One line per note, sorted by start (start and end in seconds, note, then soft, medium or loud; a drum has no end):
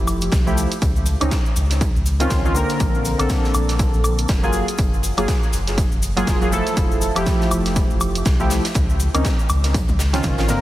0.00 0.28 F1 loud
0.00 0.43 F3 medium
0.00 0.43 A3 medium
0.00 0.43 E4 medium
0.00 0.44 G4 medium
0.07 closed hi-hat medium
0.07 cabasa medium
0.07 high woodblock soft
0.21 closed hi-hat medium
0.21 cabasa soft
0.32 0.66 C2 medium
0.32 kick loud
0.32 snare loud
0.32 closed hi-hat medium
0.32 cabasa medium
0.46 0.69 F3 medium
0.46 0.69 A3 medium
0.46 0.69 E4 medium
0.46 0.70 G4 medium
0.46 cabasa soft
0.57 closed hi-hat medium
0.57 cabasa medium
0.72 closed hi-hat soft
0.72 closed hi-hat medium
0.72 cabasa soft
0.82 1.16 C#2 loud
0.82 kick loud
0.82 closed hi-hat soft
0.82 closed hi-hat medium
0.82 cabasa soft
0.96 cabasa soft
1.06 closed hi-hat medium
1.06 cabasa medium
1.21 1.29 C#2 loud
1.21 1.33 D#3 medium
1.21 1.34 C4 medium
1.21 1.34 C#4 medium
1.21 1.34 D#4 medium
1.21 closed hi-hat soft
1.21 closed hi-hat medium
1.21 cabasa soft
1.21 high woodblock medium
1.31 kick loud
1.31 snare loud
1.31 closed hi-hat soft
1.31 closed hi-hat medium
1.31 cabasa soft
1.46 cabasa soft
1.56 1.90 C#2 medium
1.56 closed hi-hat medium
1.56 cabasa medium
1.70 snare medium
1.70 closed hi-hat medium
1.70 cabasa soft
1.81 kick loud
1.81 closed hi-hat soft
1.81 closed hi-hat medium
1.81 cabasa soft
1.96 2.27 C#2 medium
1.96 cabasa soft
2.06 closed hi-hat medium
2.06 cabasa medium
2.20 2.41 D#3 medium
2.20 2.42 C4 medium
2.20 2.42 C#4 medium
2.20 2.42 F4 loud
2.20 closed hi-hat soft
2.20 closed hi-hat medium
2.20 cabasa soft
2.30 2.64 C#2 medium
2.30 kick loud
2.30 snare loud
2.30 closed hi-hat soft
2.30 closed hi-hat medium
2.30 cabasa medium
2.44 2.53 D#3 medium
2.44 2.53 C4 medium
2.44 2.53 C#4 medium
2.44 2.53 F4 medium
2.44 cabasa soft
2.54 3.15 D3 medium
2.54 3.16 A#3 medium
2.54 3.16 C4 medium
2.54 3.17 A#4 loud
2.54 closed hi-hat medium
2.54 cabasa medium
2.69 snare soft
2.69 closed hi-hat medium
2.69 cabasa soft
2.80 3.14 A#1 medium
2.80 kick loud
2.80 closed hi-hat medium
2.80 cabasa medium
2.95 cabasa soft
3.05 closed hi-hat medium
3.05 cabasa medium
3.18 3.27 A#1 loud
3.18 4.39 D3 medium
3.18 4.40 A#3 medium
3.18 4.40 C4 medium
3.18 4.41 A4 loud
3.18 snare soft
3.18 closed hi-hat medium
3.18 cabasa soft
3.18 high woodblock medium
3.29 kick loud
3.29 snare loud
3.29 closed hi-hat soft
3.29 closed hi-hat medium
3.29 cabasa medium
3.44 snare soft
3.44 cabasa soft
3.54 3.88 A#1 medium
3.54 closed hi-hat medium
3.54 cabasa medium
3.54 high woodblock medium
3.68 snare soft
3.68 closed hi-hat medium
3.68 cabasa soft
3.79 kick loud
3.79 closed hi-hat soft
3.79 closed hi-hat medium
3.79 cabasa medium
3.94 4.25 A#1 loud
3.94 cabasa soft
4.04 closed hi-hat medium
4.04 cabasa medium
4.04 high woodblock medium
4.18 closed hi-hat medium
4.18 cabasa soft
4.28 4.63 F#1 medium
4.28 kick loud
4.28 snare loud
4.28 closed hi-hat medium
4.28 cabasa medium
4.43 4.66 F#3 medium
4.43 4.66 A#3 medium
4.43 4.66 F4 medium
4.43 4.66 G#4 medium
4.43 cabasa soft
4.53 closed hi-hat medium
4.53 cabasa medium
4.68 closed hi-hat soft
4.68 closed hi-hat medium
4.68 cabasa soft
4.78 5.12 F#1 medium
4.78 kick loud
4.78 closed hi-hat medium
4.78 closed hi-hat soft
4.78 cabasa soft
4.94 cabasa soft
5.03 closed hi-hat medium
5.03 cabasa medium
5.17 5.26 F#1 loud
5.17 5.30 F#3 medium
5.17 5.30 A#3 medium
5.17 5.30 F4 medium
5.17 5.31 G#4 medium
5.17 closed hi-hat soft
5.17 closed hi-hat medium
5.17 cabasa soft
5.17 high woodblock medium
5.28 kick loud
5.28 snare loud
5.28 closed hi-hat medium
5.28 cabasa soft
5.43 cabasa soft
5.53 5.87 F#1 medium
5.53 closed hi-hat medium
5.53 cabasa medium
5.67 snare soft
5.67 closed hi-hat medium
5.67 cabasa soft
5.78 kick loud
5.78 closed hi-hat soft
5.78 closed hi-hat medium
5.78 cabasa soft
5.92 6.23 F#1 loud
5.92 cabasa soft
6.03 closed hi-hat medium
6.03 cabasa medium
6.16 6.38 F#3 medium
6.16 6.38 A#3 medium
6.16 6.38 F4 medium
6.16 6.39 G#4 loud
6.16 closed hi-hat soft
6.16 closed hi-hat medium
6.16 cabasa soft
6.27 6.61 F1 medium
6.27 kick loud
6.27 snare loud
6.27 closed hi-hat medium
6.27 cabasa medium
6.41 6.49 F#3 medium
6.41 6.50 A#3 medium
6.41 6.50 F4 medium
6.41 6.50 G#4 medium
6.41 cabasa soft
6.51 7.12 F3 medium
6.51 7.13 A3 medium
6.51 7.13 E4 medium
6.51 7.13 A4 loud
6.51 closed hi-hat medium
6.51 cabasa medium
6.66 snare soft
6.66 closed hi-hat medium
6.66 cabasa soft
6.77 7.11 F1 medium
6.77 kick loud
6.77 closed hi-hat medium
6.77 cabasa soft
6.91 cabasa soft
7.01 closed hi-hat medium
7.01 cabasa medium
7.15 7.24 F1 loud
7.15 8.36 F3 medium
7.15 8.36 A3 medium
7.15 8.37 E4 medium
7.15 8.37 G4 loud
7.15 snare soft
7.15 closed hi-hat medium
7.15 cabasa soft
7.15 high woodblock medium
7.26 kick loud
7.26 snare loud
7.26 closed hi-hat medium
7.26 cabasa soft
7.41 snare soft
7.41 cabasa soft
7.51 7.85 F1 medium
7.51 closed hi-hat medium
7.51 cabasa medium
7.51 high woodblock medium
7.66 snare soft
7.66 closed hi-hat medium
7.66 cabasa soft
7.76 kick loud
7.76 closed hi-hat medium
7.76 cabasa soft
7.90 8.22 F1 loud
7.90 cabasa soft
8.01 closed hi-hat medium
8.01 cabasa medium
8.01 high woodblock medium
8.15 closed hi-hat medium
8.15 cabasa soft
8.25 8.60 C2 medium
8.25 kick loud
8.25 snare loud
8.25 closed hi-hat medium
8.25 cabasa medium
8.40 8.62 F3 medium
8.40 8.63 A3 medium
8.40 8.63 E4 medium
8.40 8.63 G4 medium
8.40 cabasa soft
8.50 snare loud
8.50 closed hi-hat medium
8.50 cabasa medium
8.65 snare medium
8.65 closed hi-hat medium
8.65 cabasa soft
8.74 9.09 C#2 medium
8.74 kick loud
8.74 closed hi-hat medium
8.74 cabasa soft
8.90 cabasa soft
9.00 closed hi-hat medium
9.00 cabasa medium
9.14 9.22 C#2 loud
9.14 9.27 D#3 medium
9.14 9.27 C4 medium
9.14 9.27 C#4 medium
9.14 9.27 D#4 medium
9.14 closed hi-hat soft
9.14 closed hi-hat medium
9.14 cabasa soft
9.14 high woodblock medium
9.25 kick loud
9.25 snare loud
9.25 closed hi-hat medium
9.25 cabasa medium
9.39 cabasa soft
9.49 9.83 C#2 medium
9.49 closed hi-hat medium
9.49 cabasa medium
9.49 high woodblock medium
9.64 snare medium
9.64 closed hi-hat medium
9.64 cabasa soft
9.74 kick loud
9.74 closed hi-hat medium
9.74 high tom medium
9.74 cabasa soft
9.88 10.20 C#2 loud
9.88 high tom medium
9.88 cabasa soft
9.99 snare medium
9.99 closed hi-hat medium
9.99 cabasa medium
10.13 10.35 D#3 medium
10.13 10.35 C4 medium
10.13 10.35 C#4 medium
10.13 10.35 F4 loud
10.13 snare loud
10.13 closed hi-hat medium
10.13 mid tom medium
10.13 cabasa soft
10.23 10.58 G#1 medium
10.23 kick loud
10.23 snare medium
10.23 closed hi-hat medium
10.23 mid tom medium
10.23 cabasa soft
10.38 10.46 D#3 medium
10.38 10.46 C4 medium
10.38 10.46 C#4 medium
10.38 10.47 F4 medium
10.38 snare loud
10.38 closed hi-hat medium
10.38 cabasa soft
10.48 10.61 D3 medium
10.48 10.61 A#3 medium
10.48 10.61 C4 medium
10.48 10.61 A#4 medium
10.48 snare medium
10.48 closed hi-hat medium
10.48 mid tom medium
10.48 cabasa medium